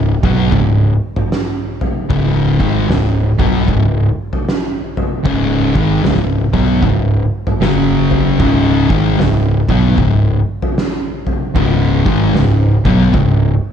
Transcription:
Already playing: picked electric bass C#1, distorted electric guitar C#2 G#2
0.23 picked electric bass B1, distorted electric guitar B2 F#3 B3, kick, floor tom, mid tom
0.52 picked electric bass C#1, distorted electric guitar C#2 G#2, kick, floor tom, mid tom
1.16 floor tom, mid tom
1.32 snare
1.81 floor tom
2.10 picked electric bass C#1, distorted electric guitar C#2 G#2 C#3, kick, floor tom
2.60 picked electric bass G#1, distorted electric guitar G#2 D#3 G#3, kick
2.89 picked electric bass C#1, distorted electric guitar C#2 G#2, snare, floor tom
3.39 picked electric bass B1, distorted electric guitar B2 F#3 B3, kick, floor tom, mid tom
3.68 picked electric bass C#1, distorted electric guitar C#2 G#2, kick, floor tom, mid tom
4.33 floor tom
4.49 snare
4.97 floor tom
5.25 picked electric bass C#1, distorted electric guitar C#2 G#2 C#3, kick, floor tom
5.75 picked electric bass G#1, distorted electric guitar G#2 D#3 G#3, kick, mid tom
6.03 picked electric bass C#1, distorted electric guitar C#2 G#2, snare, floor tom
6.53 picked electric bass B1, distorted electric guitar B2 F#3 B3, kick, floor tom, mid tom
6.82 picked electric bass C#1, distorted electric guitar C#2 G#2, kick, floor tom, mid tom
7.47 floor tom, mid tom
7.61 picked electric bass F#1, distorted electric guitar F#2 C#3 F#3, snare
8.11 floor tom
8.39 picked electric bass C#1, distorted electric guitar C#2 G#2 C#3, kick, floor tom
8.90 picked electric bass G#1, distorted electric guitar G#2 D#3 G#3, kick
9.18 picked electric bass C#1, distorted electric guitar C#2 G#2, snare, floor tom
9.69 picked electric bass B1, distorted electric guitar B2 F#3 B3, kick, floor tom, mid tom
9.98 picked electric bass C#1, distorted electric guitar C#2 G#2, kick, floor tom, mid tom
10.62 floor tom
10.78 snare
11.27 floor tom
11.56 picked electric bass C#1, distorted electric guitar C#2 G#2 C#3, kick, floor tom
12.06 picked electric bass G#1, distorted electric guitar G#2 D#3 G#3, kick, mid tom
12.34 picked electric bass C#1, distorted electric guitar C#2 G#2, snare, floor tom
12.85 picked electric bass B1, distorted electric guitar B2 F#3 B3, kick, floor tom, mid tom
13.13 picked electric bass C#1, distorted electric guitar C#2 G#2, kick, floor tom, mid tom

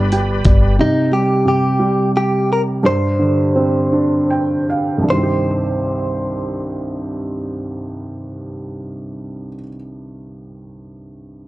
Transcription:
Already playing: upright bass G1, felt piano G3, tonewheel organ G4 B4 D5 B5
0.12 felt piano G3 G5, closed hi-hat
0.45 upright bass G1, felt piano G3 D5, kick, closed hi-hat
0.79 felt piano C3, clean electric guitar D#4
1.12 felt piano G3, clean electric guitar G4
1.45 felt piano C3, clean electric guitar G4
1.79 felt piano G3
2.17 clean electric guitar G4
2.53 clean electric guitar A#4
2.83 felt piano G2, clean electric guitar C5
3.19 felt piano D3
3.56 felt piano C4
3.92 felt piano D4
4.30 felt piano G5
4.70 felt piano F5
4.98 felt piano C2
5.03 felt piano G2
5.08 felt piano D#3, clean electric guitar C5
5.12 felt piano G3
5.18 felt piano C4
5.23 felt piano G4

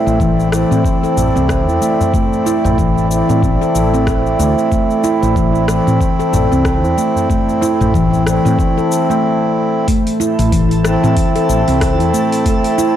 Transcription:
Already playing: harmonium A3 C4 E4, handpan E4, ambient pad E4 A4 C5 D5
0.06 fretless electric bass A1, tabla na, cabasa
0.20 handpan E3, kick, cabasa
0.40 cabasa
0.50 harmonium A3 C4 E4, cross-stick, cabasa
0.71 fretless electric bass A2, handpan C4, cabasa
0.85 kick, tabla na, cabasa
1.03 handpan A4, cabasa
1.17 fretless electric bass A1, tabla tin, tabla ge, cabasa
1.36 fretless electric bass C2, handpan C4, cabasa
1.49 kick, cross-stick, cabasa
1.68 fretless electric bass E2, tabla tin, cabasa
1.82 handpan A3, cabasa
2.00 tabla na, tabla ge, cabasa
2.14 handpan A3, kick, cabasa
2.33 cabasa
2.46 handpan E4, tabla na, cabasa
2.64 fretless electric bass A1, tabla na, tabla ge, cabasa
2.78 handpan E3, kick, cabasa
2.98 cabasa
3.08 harmonium A3 C4 E4, tabla tin, cabasa
3.29 fretless electric bass A2, handpan C4, cabasa
3.43 fretless electric bass A1, kick, tabla na, cabasa
3.61 handpan A4, tabla tin, cabasa
3.75 fretless electric bass A1, cabasa
3.93 handpan C4, tabla na, cabasa
4.07 kick, cross-stick, cabasa
4.26 cabasa
4.39 fretless electric bass D2, handpan A3, cabasa
4.58 tabla tin, cabasa
4.72 handpan A3, kick, cabasa
4.91 cabasa
5.04 handpan E4, tabla na, cabasa
5.22 fretless electric bass A1, tabla na, cabasa
5.36 handpan E3, kick, cabasa
5.55 cabasa
5.66 harmonium A3 C4, cross-stick, cabasa
5.70 harmonium E4
5.87 fretless electric bass A2, handpan C4, cabasa
6.01 kick, tabla na, cabasa
6.19 handpan A4, cabasa
6.33 fretless electric bass A1, tabla tin, tabla ge, cabasa
6.51 fretless electric bass C2, handpan C4, cabasa
6.65 kick, cross-stick, cabasa
6.84 fretless electric bass E2, tabla tin, cabasa
6.98 handpan A3, cabasa
7.15 tabla na, tabla ge, cabasa
7.30 handpan A3, kick, cabasa
7.49 cabasa
7.61 handpan E4, tabla na, cabasa
7.80 fretless electric bass A1, tabla na, tabla ge, cabasa
7.94 handpan E3, kick, cabasa
8.13 tabla na, cabasa
8.24 harmonium A3 C4, cross-stick, tabla tin, cabasa
8.29 harmonium E4
8.45 fretless electric bass A2, handpan C4, cabasa
8.59 kick, tabla na, cabasa
8.78 handpan A4, tabla tin, cabasa
8.92 cabasa
9.10 handpan A3, tabla na, cabasa
9.87 handpan A3, ambient pad E4 A4 C5 A5, synth texture A4, kick, open hi-hat, cabasa
10.07 open hi-hat, cabasa
10.20 handpan E4, cabasa
10.39 fretless electric bass A1, open hi-hat, cabasa
10.52 handpan E3, kick, open hi-hat, cabasa
10.71 open hi-hat, cabasa
10.83 harmonium A3 C4 E4, cross-stick, cabasa
11.03 fretless electric bass A2, handpan C4, cabasa
11.17 kick, open hi-hat, cabasa
11.36 handpan A4, open hi-hat, cabasa
11.49 fretless electric bass A1, cabasa
11.67 fretless electric bass C2, handpan C4, open hi-hat, cabasa
11.81 kick, cross-stick, open hi-hat, cabasa
12.00 fretless electric bass E2, open hi-hat, cabasa
12.14 handpan A3, cabasa
12.32 open hi-hat, cabasa
12.46 handpan A3, kick, open hi-hat, cabasa
12.64 open hi-hat, cabasa
12.78 handpan E4, cabasa

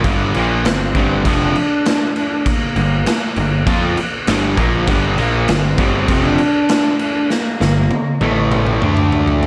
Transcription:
0.04 picked electric bass G1, distorted electric guitar G2 D3 G3, kick, crash
0.34 picked electric bass A#1, distorted electric guitar A#2 F3 A#3, crash
0.65 picked electric bass G1, distorted electric guitar G2 D3, cello C4, snare, crash
0.95 picked electric bass G1, distorted electric guitar G2 D3 G3, kick, crash
1.19 cello C4
1.25 picked electric bass F1, distorted electric guitar F2 C3 F3, cello D4, kick, crash
1.55 crash
1.85 snare, crash
2.16 cello D4, crash
2.46 cello A#3, kick, crash
2.76 picked electric bass G1, distorted electric guitar G2 D3, crash
3.06 snare, crash
3.36 picked electric bass G1, distorted electric guitar G2 D3, cello A#3, crash
3.66 picked electric bass F2, distorted electric guitar F3 C4 F4, kick, crash
3.97 muted distorted electric guitar stroke, muted picked electric bass stroke, muted overdriven electric guitar stroke, crash
4.27 picked electric bass G1, distorted electric guitar G2 D3 G3, snare, crash
4.56 picked electric bass A#1, distorted electric guitar A#2 F3 A#3, kick, crash
4.87 picked electric bass G1, distorted electric guitar G2 D3 G3, kick, crash
5.17 picked electric bass A#1, distorted electric guitar A#2 F3 A#3, crash
5.48 picked electric bass G1, distorted electric guitar G2 D3, cello C4, snare, crash
5.78 picked electric bass G1, distorted electric guitar G2 D3 G3, kick, crash
6.08 picked electric bass F1, distorted electric guitar F2 C3 F3, cello D4, kick, crash
6.38 crash
6.69 snare, crash
6.99 cello D4, crash
7.30 cello A#3, snare
7.60 picked electric bass G1, distorted electric guitar G2 D3, snare
7.91 high tom
8.21 picked electric bass A1, distorted electric guitar A2 E3 A3, cello A3, high tom
8.52 mid tom
8.66 mid tom
8.82 picked electric bass D2, distorted electric guitar D3 A3 D4, mid tom
8.97 mid tom
9.12 mid tom
9.28 floor tom
9.43 floor tom

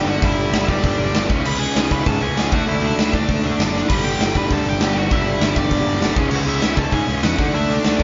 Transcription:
Already playing: overdriven electric guitar G2 D3 G3
0.05 picked electric bass G1, overdriven electric guitar G2 D3 G3, lead electric guitar F#4 F#5
0.21 picked electric bass G1, overdriven electric guitar G2 D3 G3, lead electric guitar E4 E5, kick, open hi-hat
0.35 overdriven electric guitar G2 D3 G3
0.50 picked electric bass G1, overdriven electric guitar G2 D3 G3, snare, open hi-hat
0.66 picked electric bass G1, overdriven electric guitar G2 D3 G3, lead electric guitar D5, kick
0.71 lead electric guitar D4
0.82 picked electric bass G1, overdriven electric guitar G2 D3 G3, kick, open hi-hat
0.98 picked electric bass G1, overdriven electric guitar G2 D3 G3
1.14 picked electric bass G1, overdriven electric guitar G2 D3 G3, snare, open hi-hat
1.28 picked electric bass C#2, overdriven electric guitar C#3 G#3 C#4, kick
1.44 picked electric bass C#2, overdriven electric guitar C#3 G#3 C#4, lead electric guitar B4 B5, crash
1.59 picked electric bass C#2, overdriven electric guitar C#3 G#3 C#4, lead electric guitar G#4 G#5
1.76 picked electric bass C#2, overdriven electric guitar C#3 G#3 C#4, snare, open hi-hat
1.91 picked electric bass C#2, overdriven electric guitar C#3 G#3 C#4, lead electric guitar B4 B5, kick
2.06 picked electric bass G#2, overdriven electric guitar C#3 G#3 C#4, lead electric guitar A4 A5, kick, open hi-hat
2.20 picked electric bass C#2, overdriven electric guitar C#3 G#3 C#4, lead electric guitar G#4 G#5
2.36 picked electric bass C#2, overdriven electric guitar C#3 G#3 C#4, snare, open hi-hat
2.51 picked electric bass D2, overdriven electric guitar D3 A3 D4, lead electric guitar F#4 F#5, kick
2.67 picked electric bass D2, overdriven electric guitar D3 A3 D4, lead electric guitar E4 E5, open hi-hat
2.82 overdriven electric guitar D3 A3 D4
2.96 picked electric bass D2, overdriven electric guitar D3 D4, snare, open hi-hat
3.00 overdriven electric guitar D3 A3
3.13 picked electric bass D2, overdriven electric guitar D3 A3 D4, lead electric guitar D4 D5, kick
3.29 picked electric bass D2, overdriven electric guitar D3 A3 D4, kick, open hi-hat
3.43 picked electric bass D2, overdriven electric guitar D3 A3 D4
3.58 picked electric bass F#1, overdriven electric guitar D3 A3 D4, snare, open hi-hat
3.74 overdriven electric guitar D3 A3 D4, snare
3.88 picked electric bass G1, overdriven electric guitar G2 D3 G3, lead electric guitar B4 B5, kick, crash
4.03 picked electric bass G1, overdriven electric guitar G2 D3 G3, lead electric guitar G4 G5
4.19 picked electric bass G1, overdriven electric guitar G2 D3 G3, snare, open hi-hat
4.34 picked electric bass G1, overdriven electric guitar G2 D3 G3, lead electric guitar B4 B5, kick
4.51 picked electric bass D2, overdriven electric guitar G2 D3 G3, lead electric guitar A4 A5, kick, open hi-hat
4.65 picked electric bass G1, overdriven electric guitar G2 D3 G3, lead electric guitar G4
4.70 lead electric guitar G5
4.79 picked electric bass G1, overdriven electric guitar G2 D3 G3, snare, open hi-hat
4.95 picked electric bass G1, overdriven electric guitar G2 D3 G3, lead electric guitar F#4 F#5
5.10 picked electric bass G1, overdriven electric guitar G2 D3 G3, lead electric guitar E4 E5, kick, open hi-hat
5.24 overdriven electric guitar G2 D3 G3
5.39 picked electric bass G1, overdriven electric guitar G2 D3 G3, snare, open hi-hat
5.54 picked electric bass G1, overdriven electric guitar G2 D3 G3, lead electric guitar D4, kick
5.59 lead electric guitar D5
5.69 picked electric bass G1, overdriven electric guitar G2 D3 G3, kick, open hi-hat
5.85 picked electric bass G1, overdriven electric guitar G2 D3 G3
6.00 picked electric bass G1, overdriven electric guitar G2 D3 G3, snare, open hi-hat
6.15 picked electric bass C#2, overdriven electric guitar C#3 G#3 C#4, kick
6.20 overdriven electric guitar C#4
6.30 picked electric bass C#2, overdriven electric guitar C#3 G#3 C#4, crash
6.35 lead electric guitar F#4 F#5
6.44 picked electric bass C#2, overdriven electric guitar C#3 G#3 C#4
6.48 lead electric guitar E4 E5
6.60 picked electric bass C#2, overdriven electric guitar C#3 G#3 C#4, snare, open hi-hat
6.76 picked electric bass C#2, overdriven electric guitar C#3 G#3 C#4, lead electric guitar A4 A5, kick
6.91 picked electric bass G#2, overdriven electric guitar C#3 G#3 C#4, lead electric guitar G#4 G#5, kick, open hi-hat
7.07 picked electric bass C#2, overdriven electric guitar C#3 G#3 C#4
7.23 picked electric bass E2, overdriven electric guitar C#3 G#3 C#4, lead electric guitar F#4 F#5, snare, open hi-hat
7.38 picked electric bass D2, overdriven electric guitar D3 A3 D4, kick
7.54 picked electric bass D2, overdriven electric guitar D3 A3 D4, lead electric guitar E4 E5, open hi-hat
7.69 overdriven electric guitar D3 A3 D4, lead electric guitar D4
7.73 lead electric guitar D5
7.84 picked electric bass D2, overdriven electric guitar D3 A3 D4, snare, open hi-hat
7.99 picked electric bass D2, overdriven electric guitar D3 A3, kick

